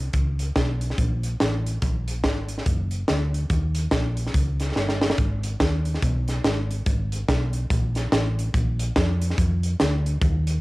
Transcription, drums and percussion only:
0.13 kick, closed hi-hat
0.39 closed hi-hat
0.56 kick, snare, closed hi-hat
0.81 closed hi-hat
0.90 snare
0.98 kick, closed hi-hat
1.23 closed hi-hat
1.40 snare, closed hi-hat
1.66 closed hi-hat
1.82 kick, closed hi-hat
2.08 closed hi-hat
2.24 kick, snare, closed hi-hat
2.49 closed hi-hat
2.58 snare
2.66 kick, closed hi-hat
2.91 closed hi-hat
3.08 snare, closed hi-hat
3.34 closed hi-hat
3.50 kick, closed hi-hat
3.75 closed hi-hat
3.91 kick, snare, closed hi-hat
4.17 closed hi-hat
4.27 snare
4.34 kick, closed hi-hat
4.60 snare, closed hi-hat
4.76 snare
4.89 snare
5.02 snare
5.10 snare
5.18 kick, closed hi-hat
5.43 closed hi-hat
5.60 kick, snare, closed hi-hat
5.85 closed hi-hat
5.94 snare
6.02 kick, closed hi-hat
6.28 snare, closed hi-hat
6.44 snare, closed hi-hat
6.71 closed hi-hat
6.86 kick, closed hi-hat
7.12 closed hi-hat
7.28 kick, snare, closed hi-hat
7.53 closed hi-hat
7.70 kick, closed hi-hat
7.95 snare, closed hi-hat
8.12 snare, closed hi-hat
8.39 closed hi-hat
8.54 kick, closed hi-hat
8.79 closed hi-hat
8.96 kick, snare, closed hi-hat
9.21 closed hi-hat
9.30 snare
9.38 kick, closed hi-hat
9.63 closed hi-hat
9.80 snare, closed hi-hat
10.06 closed hi-hat
10.21 kick, closed hi-hat
10.47 closed hi-hat

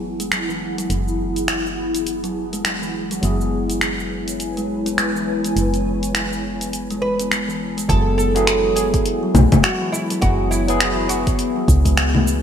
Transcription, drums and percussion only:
0.20 closed hi-hat, cabasa
0.32 finger snap, closed hi-hat, cabasa
0.50 cabasa
0.78 closed hi-hat, cabasa
0.90 closed hi-hat, cabasa
1.08 cabasa
1.36 closed hi-hat, cabasa
1.48 finger snap, closed hi-hat, cabasa
1.66 cabasa
1.95 closed hi-hat, cabasa
2.07 closed hi-hat, cabasa
2.24 closed hi-hat, cabasa
2.53 closed hi-hat, cabasa
2.65 finger snap, closed hi-hat, cabasa
2.83 cabasa
3.11 closed hi-hat, cabasa
3.23 closed hi-hat, cabasa
3.41 cabasa
3.70 closed hi-hat, cabasa
3.81 finger snap, closed hi-hat, cabasa
4.00 cabasa
4.28 closed hi-hat, cabasa
4.40 closed hi-hat, cabasa
4.57 closed hi-hat, cabasa
4.86 closed hi-hat, cabasa
4.98 finger snap, closed hi-hat, cabasa
5.16 cabasa
5.44 closed hi-hat, cabasa
5.57 closed hi-hat, cabasa
5.74 closed hi-hat, cabasa
6.03 closed hi-hat, cabasa
6.15 finger snap, closed hi-hat, cabasa
6.33 cabasa
6.61 closed hi-hat, cabasa
6.73 closed hi-hat, cabasa
6.90 closed hi-hat, cabasa
7.20 closed hi-hat, cabasa
7.32 finger snap, closed hi-hat, cabasa
7.50 cabasa
7.78 closed hi-hat, cabasa
7.89 kick, closed hi-hat, cabasa
8.19 cabasa
8.36 closed hi-hat, cabasa
8.47 finger snap, closed hi-hat, cabasa
8.77 closed hi-hat, cabasa
8.94 kick, closed hi-hat, cabasa
9.06 closed hi-hat, cabasa
9.35 closed hi-hat, low conga, cabasa
9.52 kick, closed hi-hat, low conga, cabasa
9.64 finger snap, closed hi-hat, cabasa
9.94 cabasa
10.10 closed hi-hat, cabasa
10.22 kick, closed hi-hat, cabasa
10.52 cabasa
10.68 closed hi-hat, cabasa
10.80 finger snap, closed hi-hat, cabasa
11.09 closed hi-hat, cabasa
11.27 kick, closed hi-hat, cabasa
11.39 closed hi-hat, cabasa
11.68 kick, closed hi-hat, cabasa
11.85 kick, closed hi-hat, cabasa
11.97 finger snap, closed hi-hat, cabasa
12.15 low conga
12.27 cabasa

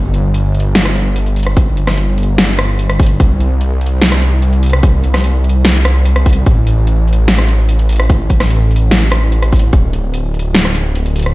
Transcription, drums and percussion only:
0.14 closed hi-hat
0.34 closed hi-hat
0.55 closed hi-hat
0.60 closed hi-hat
0.75 snare, closed hi-hat
0.85 cross-stick
0.95 closed hi-hat
1.16 closed hi-hat
1.26 closed hi-hat
1.36 closed hi-hat, open hi-hat
1.43 cross-stick, closed hi-hat
1.57 kick, closed hi-hat
1.77 closed hi-hat
1.87 cross-stick, snare
1.97 closed hi-hat
2.18 closed hi-hat
2.23 closed hi-hat
2.38 snare, closed hi-hat
2.59 cross-stick, closed hi-hat
2.79 closed hi-hat
2.90 cross-stick, closed hi-hat
2.99 kick, closed hi-hat, open hi-hat
3.06 closed hi-hat
3.20 kick, closed hi-hat
3.40 closed hi-hat
3.61 closed hi-hat
3.81 closed hi-hat
3.86 closed hi-hat
4.02 snare, closed hi-hat
4.12 cross-stick
4.22 closed hi-hat
4.42 closed hi-hat
4.53 closed hi-hat
4.63 closed hi-hat, open hi-hat
4.70 cross-stick, closed hi-hat
4.83 kick, closed hi-hat
5.04 closed hi-hat
5.14 cross-stick, snare
5.24 closed hi-hat
5.44 closed hi-hat
5.49 closed hi-hat
5.65 snare, closed hi-hat
5.85 cross-stick, closed hi-hat
6.05 closed hi-hat
6.16 cross-stick, closed hi-hat
6.26 kick, closed hi-hat, open hi-hat
6.33 closed hi-hat
6.46 kick, closed hi-hat
6.67 closed hi-hat
6.87 closed hi-hat
7.08 closed hi-hat
7.13 closed hi-hat
7.28 snare, closed hi-hat
7.38 cross-stick
7.48 closed hi-hat
7.69 closed hi-hat
7.79 closed hi-hat
7.89 closed hi-hat, open hi-hat
7.96 cross-stick, closed hi-hat
8.10 kick, closed hi-hat
8.30 kick, closed hi-hat
8.40 cross-stick, snare
8.50 closed hi-hat
8.71 closed hi-hat
8.76 closed hi-hat
8.91 snare, closed hi-hat
9.12 cross-stick, closed hi-hat
9.32 closed hi-hat
9.43 cross-stick, closed hi-hat
9.52 kick, closed hi-hat, open hi-hat
9.59 closed hi-hat
9.73 kick, closed hi-hat
9.93 closed hi-hat
10.14 closed hi-hat
10.34 closed hi-hat
10.39 closed hi-hat
10.55 snare, closed hi-hat
10.65 cross-stick
10.75 closed hi-hat
10.95 closed hi-hat
11.06 closed hi-hat
11.16 closed hi-hat, open hi-hat
11.23 cross-stick, closed hi-hat

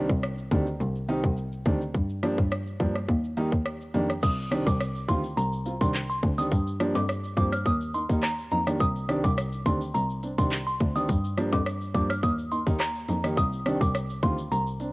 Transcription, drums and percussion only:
0.10 kick, shaker
0.23 cross-stick, shaker
0.38 shaker
0.51 kick, closed hi-hat, shaker
0.67 shaker
0.80 shaker
0.96 shaker
1.09 closed hi-hat, shaker
1.24 kick, shaker
1.37 shaker
1.52 shaker
1.66 kick, closed hi-hat, shaker
1.81 shaker
1.94 kick, shaker
2.09 shaker
2.23 cross-stick, closed hi-hat, shaker
2.38 kick, shaker
2.51 cross-stick, shaker
2.67 shaker
2.80 kick, closed hi-hat, shaker
2.95 cross-stick, shaker
3.09 kick, shaker
3.24 shaker
3.37 closed hi-hat, shaker
3.52 kick, shaker
3.66 cross-stick, shaker
3.81 shaker
3.94 closed hi-hat, shaker
4.10 cross-stick, shaker
4.23 kick, crash, shaker
4.38 shaker
4.52 cross-stick, closed hi-hat, shaker
4.67 kick, shaker
4.80 cross-stick, shaker
4.95 shaker
5.09 kick, closed hi-hat, shaker
5.24 shaker
5.37 shaker
5.52 shaker
5.66 closed hi-hat, shaker
5.81 kick, shaker
5.94 clap, shaker
6.10 shaker
6.23 kick, closed hi-hat, shaker
6.38 shaker
6.51 kick, shaker
6.67 shaker
6.80 cross-stick, closed hi-hat, shaker
6.95 high timbale, shaker
7.09 cross-stick, shaker
7.24 shaker
7.37 kick, closed hi-hat, shaker
7.52 cross-stick, shaker
7.66 kick, shaker
7.81 shaker
7.94 closed hi-hat, shaker
8.10 kick, shaker
8.23 cross-stick, clap, shaker
8.38 shaker
8.51 closed hi-hat, shaker
8.67 cross-stick, shaker
8.80 kick, shaker
8.95 shaker
9.09 cross-stick, closed hi-hat, shaker
9.24 kick, shaker
9.37 cross-stick, shaker
9.52 shaker
9.66 kick, closed hi-hat, shaker
9.81 shaker
9.95 shaker
10.10 shaker
10.23 closed hi-hat, shaker
10.38 kick, shaker
10.51 clap, shaker
10.67 shaker
10.80 kick, closed hi-hat, shaker
10.95 shaker
11.08 kick, shaker
11.24 shaker
11.37 cross-stick, closed hi-hat, shaker
11.52 kick, high timbale, shaker
11.66 cross-stick, shaker
11.81 shaker
11.94 kick, closed hi-hat, shaker
12.10 cross-stick, shaker
12.23 kick, shaker
12.38 shaker
12.51 closed hi-hat, shaker
12.67 kick, shaker
12.80 cross-stick, clap, shaker
12.95 shaker
13.08 closed hi-hat, shaker
13.24 cross-stick, shaker
13.37 kick, shaker
13.52 shaker
13.66 cross-stick, closed hi-hat, shaker
13.81 kick, shaker
13.94 cross-stick, shaker
14.10 shaker
14.23 kick, closed hi-hat, shaker
14.38 shaker
14.52 shaker
14.67 shaker
14.80 closed hi-hat, shaker

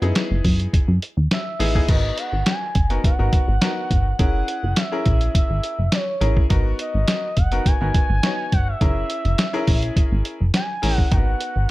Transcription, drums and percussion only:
0.02 closed hi-hat
0.15 snare, closed hi-hat
0.45 kick, open hi-hat
0.60 closed hi-hat
0.73 kick, closed hi-hat
1.02 closed hi-hat
1.31 snare, closed hi-hat
1.60 open hi-hat
1.75 kick
1.89 kick, closed hi-hat, crash
2.18 closed hi-hat
2.46 snare, closed hi-hat
2.75 kick, closed hi-hat
2.90 closed hi-hat
3.04 kick, closed hi-hat
3.33 kick, closed hi-hat
3.62 snare, closed hi-hat
3.91 kick, closed hi-hat
4.19 kick, closed hi-hat
4.48 closed hi-hat
4.76 snare, closed hi-hat
5.06 kick, closed hi-hat
5.21 closed hi-hat
5.35 kick, closed hi-hat
5.63 closed hi-hat
5.92 snare, closed hi-hat
6.21 closed hi-hat
6.37 kick
6.50 kick, closed hi-hat
6.79 closed hi-hat
7.08 snare, closed hi-hat
7.37 kick, closed hi-hat
7.52 closed hi-hat
7.66 kick, closed hi-hat
7.94 kick, closed hi-hat
8.23 snare, closed hi-hat
8.52 kick, closed hi-hat
8.81 kick, closed hi-hat
9.10 closed hi-hat
9.25 closed hi-hat
9.38 snare, closed hi-hat
9.67 kick, open hi-hat
9.83 closed hi-hat
9.96 kick, closed hi-hat
10.25 closed hi-hat
10.54 snare, closed hi-hat
10.83 open hi-hat
10.98 kick
11.12 kick, closed hi-hat
11.41 closed hi-hat

